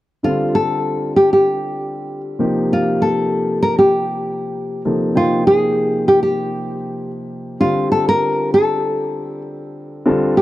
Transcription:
0, 0, Header, 1, 3, 480
1, 0, Start_track
1, 0, Tempo, 613497
1, 188, Time_signature, 4, 2, 24, 8
1, 8152, End_track
2, 0, Start_track
2, 0, Title_t, "Nylon-string guitar"
2, 0, Program_c, 0, 24
2, 190, Note_on_c, 0, 65, 65
2, 430, Note_on_c, 0, 69, 73
2, 436, Note_off_c, 0, 65, 0
2, 878, Note_off_c, 0, 69, 0
2, 911, Note_on_c, 0, 67, 64
2, 1024, Note_off_c, 0, 67, 0
2, 1039, Note_on_c, 0, 67, 59
2, 1725, Note_off_c, 0, 67, 0
2, 2135, Note_on_c, 0, 65, 67
2, 2361, Note_on_c, 0, 69, 71
2, 2369, Note_off_c, 0, 65, 0
2, 2833, Note_off_c, 0, 69, 0
2, 2837, Note_on_c, 0, 70, 78
2, 2959, Note_off_c, 0, 70, 0
2, 2962, Note_on_c, 0, 67, 64
2, 3764, Note_off_c, 0, 67, 0
2, 4045, Note_on_c, 0, 65, 75
2, 4277, Note_off_c, 0, 65, 0
2, 4280, Note_on_c, 0, 68, 80
2, 4754, Note_off_c, 0, 68, 0
2, 4757, Note_on_c, 0, 67, 75
2, 4863, Note_off_c, 0, 67, 0
2, 4872, Note_on_c, 0, 67, 64
2, 5561, Note_off_c, 0, 67, 0
2, 5951, Note_on_c, 0, 65, 73
2, 6191, Note_off_c, 0, 65, 0
2, 6194, Note_on_c, 0, 69, 76
2, 6319, Note_off_c, 0, 69, 0
2, 6327, Note_on_c, 0, 70, 82
2, 6677, Note_off_c, 0, 70, 0
2, 6681, Note_on_c, 0, 69, 71
2, 7364, Note_off_c, 0, 69, 0
2, 8115, Note_on_c, 0, 67, 65
2, 8152, Note_off_c, 0, 67, 0
2, 8152, End_track
3, 0, Start_track
3, 0, Title_t, "Grand piano"
3, 0, Program_c, 1, 0
3, 182, Note_on_c, 1, 50, 46
3, 188, Note_on_c, 1, 55, 43
3, 189, Note_on_c, 1, 65, 43
3, 190, Note_on_c, 1, 60, 42
3, 190, Note_on_c, 1, 69, 51
3, 1835, Note_off_c, 1, 50, 0
3, 1838, Note_off_c, 1, 55, 0
3, 1839, Note_off_c, 1, 65, 0
3, 1839, Note_off_c, 1, 69, 0
3, 1840, Note_off_c, 1, 60, 0
3, 1870, Note_on_c, 1, 53, 48
3, 1871, Note_on_c, 1, 48, 57
3, 1875, Note_on_c, 1, 58, 50
3, 1877, Note_on_c, 1, 63, 52
3, 1880, Note_on_c, 1, 67, 61
3, 3760, Note_off_c, 1, 48, 0
3, 3760, Note_off_c, 1, 53, 0
3, 3762, Note_off_c, 1, 58, 0
3, 3763, Note_off_c, 1, 63, 0
3, 3764, Note_off_c, 1, 67, 0
3, 3793, Note_on_c, 1, 48, 43
3, 3796, Note_on_c, 1, 58, 40
3, 3797, Note_on_c, 1, 53, 41
3, 3798, Note_on_c, 1, 69, 51
3, 3800, Note_on_c, 1, 63, 43
3, 4014, Note_off_c, 1, 48, 0
3, 4017, Note_off_c, 1, 53, 0
3, 4019, Note_off_c, 1, 58, 0
3, 4019, Note_off_c, 1, 63, 0
3, 4026, Note_on_c, 1, 48, 47
3, 4029, Note_on_c, 1, 53, 46
3, 4031, Note_on_c, 1, 58, 46
3, 4031, Note_on_c, 1, 63, 45
3, 4034, Note_off_c, 1, 69, 0
3, 4034, Note_on_c, 1, 79, 55
3, 5917, Note_off_c, 1, 48, 0
3, 5919, Note_off_c, 1, 53, 0
3, 5919, Note_off_c, 1, 58, 0
3, 5920, Note_off_c, 1, 63, 0
3, 5921, Note_off_c, 1, 79, 0
3, 5948, Note_on_c, 1, 50, 48
3, 5949, Note_on_c, 1, 55, 46
3, 5952, Note_on_c, 1, 60, 44
3, 5955, Note_on_c, 1, 67, 54
3, 5956, Note_on_c, 1, 65, 46
3, 7837, Note_off_c, 1, 50, 0
3, 7838, Note_off_c, 1, 55, 0
3, 7839, Note_off_c, 1, 60, 0
3, 7841, Note_off_c, 1, 67, 0
3, 7842, Note_off_c, 1, 65, 0
3, 7867, Note_on_c, 1, 60, 65
3, 7869, Note_on_c, 1, 50, 73
3, 7870, Note_on_c, 1, 55, 68
3, 7871, Note_on_c, 1, 65, 66
3, 7874, Note_on_c, 1, 69, 78
3, 8086, Note_off_c, 1, 50, 0
3, 8086, Note_off_c, 1, 60, 0
3, 8087, Note_off_c, 1, 55, 0
3, 8088, Note_off_c, 1, 65, 0
3, 8089, Note_off_c, 1, 69, 0
3, 8111, Note_on_c, 1, 50, 66
3, 8115, Note_on_c, 1, 55, 58
3, 8117, Note_on_c, 1, 60, 55
3, 8119, Note_on_c, 1, 65, 58
3, 8119, Note_on_c, 1, 69, 65
3, 8152, Note_off_c, 1, 50, 0
3, 8152, Note_off_c, 1, 55, 0
3, 8152, Note_off_c, 1, 60, 0
3, 8152, Note_off_c, 1, 65, 0
3, 8152, Note_off_c, 1, 69, 0
3, 8152, End_track
0, 0, End_of_file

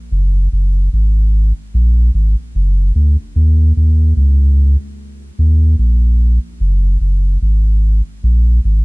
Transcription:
0, 0, Header, 1, 2, 480
1, 0, Start_track
1, 0, Tempo, 811908
1, 61, Time_signature, 4, 2, 24, 8
1, 5230, End_track
2, 0, Start_track
2, 0, Title_t, "Sub bass"
2, 0, Program_c, 0, 38
2, 68, Note_on_c, 0, 30, 101
2, 285, Note_off_c, 0, 30, 0
2, 310, Note_on_c, 0, 30, 88
2, 526, Note_off_c, 0, 30, 0
2, 550, Note_on_c, 0, 32, 98
2, 902, Note_off_c, 0, 32, 0
2, 1030, Note_on_c, 0, 34, 112
2, 1246, Note_off_c, 0, 34, 0
2, 1267, Note_on_c, 0, 32, 94
2, 1393, Note_off_c, 0, 32, 0
2, 1509, Note_on_c, 0, 30, 99
2, 1725, Note_off_c, 0, 30, 0
2, 1747, Note_on_c, 0, 38, 92
2, 1872, Note_off_c, 0, 38, 0
2, 1985, Note_on_c, 0, 39, 106
2, 2203, Note_off_c, 0, 39, 0
2, 2228, Note_on_c, 0, 39, 94
2, 2445, Note_off_c, 0, 39, 0
2, 2463, Note_on_c, 0, 37, 96
2, 2818, Note_off_c, 0, 37, 0
2, 3185, Note_on_c, 0, 39, 98
2, 3403, Note_off_c, 0, 39, 0
2, 3421, Note_on_c, 0, 34, 93
2, 3777, Note_off_c, 0, 34, 0
2, 3904, Note_on_c, 0, 30, 104
2, 4122, Note_off_c, 0, 30, 0
2, 4142, Note_on_c, 0, 30, 88
2, 4362, Note_off_c, 0, 30, 0
2, 4386, Note_on_c, 0, 32, 93
2, 4740, Note_off_c, 0, 32, 0
2, 4868, Note_on_c, 0, 34, 109
2, 5085, Note_off_c, 0, 34, 0
2, 5111, Note_on_c, 0, 32, 93
2, 5230, Note_off_c, 0, 32, 0
2, 5230, End_track
0, 0, End_of_file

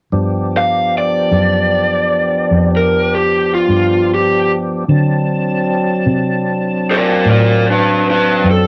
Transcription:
0, 0, Header, 1, 4, 480
1, 0, Start_track
1, 0, Tempo, 792602
1, 78, Time_signature, 12, 3, 24, 8
1, 5251, End_track
2, 0, Start_track
2, 0, Title_t, "Lead electric guitar"
2, 0, Program_c, 0, 29
2, 347, Note_on_c, 0, 77, 61
2, 566, Note_off_c, 0, 77, 0
2, 594, Note_on_c, 0, 74, 56
2, 1632, Note_off_c, 0, 74, 0
2, 1676, Note_on_c, 0, 70, 55
2, 1890, Note_off_c, 0, 70, 0
2, 1906, Note_on_c, 0, 67, 57
2, 2125, Note_off_c, 0, 67, 0
2, 2147, Note_on_c, 0, 65, 57
2, 2482, Note_off_c, 0, 65, 0
2, 2509, Note_on_c, 0, 67, 62
2, 2727, Note_off_c, 0, 67, 0
2, 4183, Note_on_c, 0, 70, 55
2, 4188, Note_on_c, 0, 74, 62
2, 4406, Note_off_c, 0, 74, 0
2, 4410, Note_off_c, 0, 70, 0
2, 4419, Note_on_c, 0, 70, 56
2, 4424, Note_on_c, 0, 74, 59
2, 4632, Note_off_c, 0, 70, 0
2, 4644, Note_off_c, 0, 74, 0
2, 4667, Note_on_c, 0, 62, 51
2, 4673, Note_on_c, 0, 71, 49
2, 4877, Note_off_c, 0, 62, 0
2, 4887, Note_off_c, 0, 71, 0
2, 4907, Note_on_c, 0, 62, 53
2, 4911, Note_on_c, 0, 71, 58
2, 5116, Note_off_c, 0, 62, 0
2, 5127, Note_off_c, 0, 71, 0
2, 5152, Note_on_c, 0, 69, 63
2, 5251, Note_off_c, 0, 69, 0
2, 5251, End_track
3, 0, Start_track
3, 0, Title_t, "Tonewheel organ"
3, 0, Program_c, 1, 16
3, 74, Note_on_c, 1, 62, 49
3, 74, Note_on_c, 1, 67, 45
3, 75, Note_on_c, 1, 53, 46
3, 79, Note_on_c, 1, 59, 46
3, 2933, Note_off_c, 1, 53, 0
3, 2933, Note_off_c, 1, 62, 0
3, 2933, Note_off_c, 1, 67, 0
3, 2935, Note_off_c, 1, 59, 0
3, 2960, Note_on_c, 1, 60, 52
3, 2962, Note_on_c, 1, 81, 52
3, 2964, Note_on_c, 1, 54, 52
3, 2964, Note_on_c, 1, 62, 47
3, 5251, Note_off_c, 1, 54, 0
3, 5251, Note_off_c, 1, 60, 0
3, 5251, Note_off_c, 1, 62, 0
3, 5251, Note_off_c, 1, 81, 0
3, 5251, End_track
4, 0, Start_track
4, 0, Title_t, "Fingered electric bass"
4, 0, Program_c, 2, 33
4, 74, Note_on_c, 2, 43, 61
4, 775, Note_off_c, 2, 43, 0
4, 796, Note_on_c, 2, 42, 64
4, 1496, Note_off_c, 2, 42, 0
4, 1519, Note_on_c, 2, 41, 54
4, 2217, Note_off_c, 2, 41, 0
4, 2232, Note_on_c, 2, 43, 69
4, 2934, Note_off_c, 2, 43, 0
4, 2957, Note_on_c, 2, 50, 61
4, 3656, Note_off_c, 2, 50, 0
4, 3671, Note_on_c, 2, 48, 68
4, 4372, Note_off_c, 2, 48, 0
4, 4392, Note_on_c, 2, 45, 53
4, 5093, Note_off_c, 2, 45, 0
4, 5112, Note_on_c, 2, 42, 75
4, 5251, Note_off_c, 2, 42, 0
4, 5251, End_track
0, 0, End_of_file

